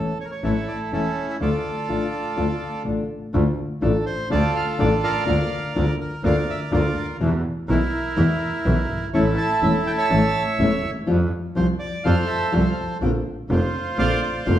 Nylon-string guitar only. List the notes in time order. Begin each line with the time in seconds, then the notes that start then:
Already playing: E3 A3 C#4 E4
0.43 E3 A3 C#4 E4
0.92 E3 A3 C#4 E4
1.40 D3 A3 D4 F4
1.88 D3 A3 D4 F4
2.36 D3 A3 D4 F4
2.84 D3 A3 D4 F4
3.33 D3 A3 D4 F4
3.81 D3 A3 D4 F4
4.30 D3 A3 D4 F4
4.78 D3 A3 D4 F4
5.26 D3 A#3 D4 F4
5.75 D3 A#3 D4 F4
6.23 D3 A#3 D4 F4
6.71 D3 A#3 D4 F4
7.20 B2 E3 G#3 B3 E4
7.69 B2 E3 G#3 B3 E4
8.16 B2 E3 G#3 B3 E4
8.65 B2 E3 G#3 B3 E4
9.14 E3 A3 C#4 E4
9.62 E3 A3 C#4 E4
10.10 E3 A3 C#4 E4
10.59 E3 A3 C#4 E4
11.06 F3 G3 C4 F4
11.55 F3 G3 C4 F4
12.04 F3 G3 C4 F4
12.52 F3 G3 C4 F4
13.01 D3 A#3 C4 F4
13.49 D3 A#3 C4 F4
13.98 D3 A#3 C4 F4
14.46 D3 A#3 C4 F4